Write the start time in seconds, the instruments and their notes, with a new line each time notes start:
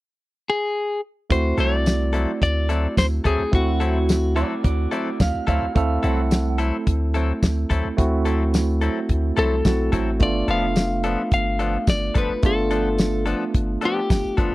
0.50 clean electric guitar G#4
1.30 sub bass D2, tine electric piano A3 C4 E4 F#4, clean electric guitar C5, kick, closed hi-hat
1.58 sub bass C2, clean electric guitar F#3 C4 E4 A4 D5, closed hi-hat
1.86 snare, closed hi-hat, tambourine
2.13 clean electric guitar F#3 C4 E4 A4, closed hi-hat
2.42 sub bass D2, clean electric guitar D5, kick, closed hi-hat
2.69 clean electric guitar F#3 C4 E4 A4, closed hi-hat
2.97 sub bass D2, clean electric guitar C5, kick, snare, closed hi-hat, tambourine
3.24 sub bass D2, clean electric guitar F#3 C4 E4 G#4 A4, kick, closed hi-hat
3.39 sub bass D2
3.51 sub bass D2, tine electric piano A3 C4 E4 F#4, clean electric guitar F#4, kick, closed hi-hat
3.80 clean electric guitar F#3 C4 E4 A4, closed hi-hat
4.09 snare, closed hi-hat, tambourine
4.36 clean electric guitar F#3 C4 E4 F#4 A4 D5, closed hi-hat
4.64 sub bass D2, clean electric guitar F#4 D5, kick, closed hi-hat
4.91 clean electric guitar F#3 C4 E4 F#4 A4 D5, closed hi-hat
5.20 sub bass D2, clean electric guitar D5 F5, kick, snare, closed hi-hat, tambourine
5.34 sub bass D2
5.47 sub bass D2, clean electric guitar F#3 C4 E4 A4 D5 F5, kick, closed hi-hat
5.62 sub bass D2
5.75 sub bass D2, tine electric piano A3 C4 E4 A4, clean electric guitar D5 F5, kick, closed hi-hat
6.03 sub bass C2, clean electric guitar F#3 C4 E4 A4 F#5, closed hi-hat
6.31 snare, closed hi-hat, tambourine
6.58 clean electric guitar F#3 C4 E4 A4, closed hi-hat
6.87 sub bass D2, kick, closed hi-hat
7.14 clean electric guitar F#3 C4 E4 A4, closed hi-hat
7.43 sub bass D2, kick, snare, closed hi-hat, tambourine
7.70 sub bass D2, clean electric guitar F#3 C4 E4 A4, kick, closed hi-hat
7.85 sub bass D2
7.97 sub bass D2, tine electric piano A3 C4 E4 F#4, kick, closed hi-hat
8.25 clean electric guitar F#3 C4 E4 A4, closed hi-hat
8.54 snare, closed hi-hat, tambourine
8.81 clean electric guitar F#3 C4 E4 A4, closed hi-hat
9.09 sub bass D2, kick, closed hi-hat
9.37 sub bass C2, clean electric guitar F#3 C4 E4 A4, closed hi-hat
9.65 sub bass B1, tine electric piano A3 C4 E4 F#4, kick, snare, closed hi-hat, tambourine
9.92 sub bass A1, clean electric guitar F#3 C4 E4 A4, kick, closed hi-hat
10.19 sub bass G1, tine electric piano A3 B3 D4 F4, clean electric guitar D5, kick, closed hi-hat
10.48 sub bass F1, clean electric guitar F3 B3 D4 A4 F5, closed hi-hat
10.76 snare, closed hi-hat, tambourine
11.04 clean electric guitar F3 B3 D4 A4, closed hi-hat
11.31 sub bass G1, clean electric guitar F5, kick, closed hi-hat
11.59 clean electric guitar F3 B3 D4 A4, closed hi-hat
11.87 sub bass G1, clean electric guitar D5, kick, snare, closed hi-hat, tambourine
12.14 sub bass G1, clean electric guitar F3 B3 D4 A4 B4, kick, closed hi-hat
12.29 sub bass G1
12.43 sub bass G1, tine electric piano A3 B3 D4 F4, clean electric guitar A4, kick, closed hi-hat
12.71 clean electric guitar F3 B3 D4 A4, closed hi-hat
12.98 snare, closed hi-hat, tambourine
13.26 clean electric guitar F3 B3 D4 A4, closed hi-hat
13.54 sub bass G1, kick, closed hi-hat
13.81 clean electric guitar F3 B3 D4 G4 A4, closed hi-hat
14.10 sub bass G1, kick, snare, closed hi-hat, tambourine
14.25 sub bass G1
14.37 sub bass G1, clean electric guitar F3 B3 D4 A4, kick, closed hi-hat
14.41 clean electric guitar F4